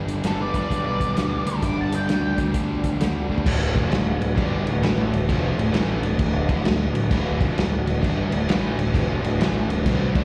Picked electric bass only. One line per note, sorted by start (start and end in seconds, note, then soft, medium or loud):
0.07 0.21 G1 medium
0.23 0.62 G1 medium
0.70 0.95 B1 medium
1.00 1.14 B1 medium
1.15 1.40 D2 medium
1.45 1.59 D2 medium
1.62 1.87 G1 medium
1.91 2.05 G1 medium
2.07 2.32 D2 medium
2.37 2.51 D2 medium
2.54 2.79 D2 medium
2.83 2.97 D2 medium
2.99 3.24 D2 medium
3.29 3.43 D2 medium
3.46 3.73 D1 loud
3.75 3.90 F1 medium
3.91 4.18 D1 medium
4.20 4.35 D1 medium
4.37 4.64 G1 loud
4.66 4.81 D1 medium
4.82 5.10 A1 medium
5.11 5.27 D1 medium
5.29 5.56 F1 loud
5.57 5.72 D1 medium
5.73 6.01 A1 medium
6.02 6.18 D1 medium
6.19 6.46 D1 medium
6.49 6.63 D1 medium
6.64 6.92 D1 medium
6.94 7.09 D1 medium
7.11 7.38 D1 loud
7.40 7.55 F1 loud
7.55 7.83 D1 medium
7.85 8.00 D1 medium
8.03 8.30 G1 medium
8.31 8.46 D1 medium
8.47 8.75 A1 medium
8.76 8.92 D1 medium
8.94 9.21 F1 loud
9.22 9.37 D1 medium
9.38 9.66 A1 medium
9.69 9.84 D1 medium
9.85 10.13 C2 loud
10.15 10.24 D2 medium